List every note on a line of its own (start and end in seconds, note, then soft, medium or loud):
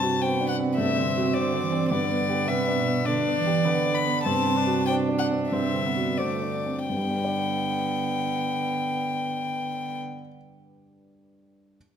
0.00 0.75 G2 soft
0.00 1.36 C3 soft
0.00 0.14 C4 soft
0.00 0.33 F#4 soft
0.00 0.23 A5 medium
0.21 0.79 B3 soft
0.21 0.52 C5 soft
0.21 0.48 G5 medium
0.41 0.71 D4 soft
0.48 0.56 F#5 medium
0.59 0.89 C4 soft
0.76 1.87 G2 soft
0.76 1.05 A3 soft
0.76 1.35 E5 medium
0.97 1.27 D3 soft
1.05 1.91 C4 soft
1.17 1.46 F#4 soft
1.34 1.63 D3 soft
1.34 1.64 C5 soft
1.34 1.88 D5 medium
1.54 1.83 D4 soft
1.61 1.89 E3 soft
1.72 1.90 C4 soft
1.89 3.03 G2 soft
1.89 2.49 D3 soft
1.89 3.07 B3 soft
1.89 2.49 D5 medium
2.10 2.40 B3 soft
2.29 2.59 G4 soft
2.47 2.78 C3 soft
2.47 2.79 B4 soft
2.47 3.07 E5 medium
2.68 2.98 D4 soft
2.77 3.06 B2 soft
2.88 3.18 B3 soft
3.05 3.15 B2 soft
3.05 3.38 D3 soft
3.05 3.66 D4 soft
3.05 3.96 D5 medium
3.27 3.58 B3 soft
3.36 3.67 E3 soft
3.46 3.77 G4 soft
3.65 4.26 D3 soft
3.65 4.26 B3 soft
3.65 3.97 B4 soft
3.86 4.18 D4 soft
3.95 4.23 B5 medium
4.06 4.26 B3 soft
4.24 5.48 G2 soft
4.24 5.51 C3 soft
4.24 4.58 C4 soft
4.24 4.86 A5 medium
4.47 4.80 C4 soft
4.57 4.87 D4 soft
4.67 5.00 F#4 soft
4.87 5.54 D4 soft
4.87 5.22 C5 soft
4.87 4.95 G5 medium
5.09 5.43 D4 soft
5.19 5.27 F#5 medium
5.31 5.65 C4 soft
5.51 6.85 G2 soft
5.51 6.21 C3 soft
5.51 5.87 C4 soft
5.51 6.19 E5 soft
5.73 6.09 D3 soft
5.86 6.21 B3 soft
5.97 6.33 F#4 soft
6.17 6.64 D3 soft
6.17 6.64 A3 soft
6.17 6.56 C5 soft
6.17 6.87 D5 soft
6.42 6.79 D4 soft
6.66 6.89 C4 soft
6.87 10.00 G2 soft
6.87 9.99 D3 soft
6.87 9.99 B3 soft
6.87 9.97 G5 soft
6.96 10.06 G3 soft
7.04 10.14 B3 soft
7.10 10.21 D4 soft
7.17 10.27 G4 soft
7.24 10.35 D5 soft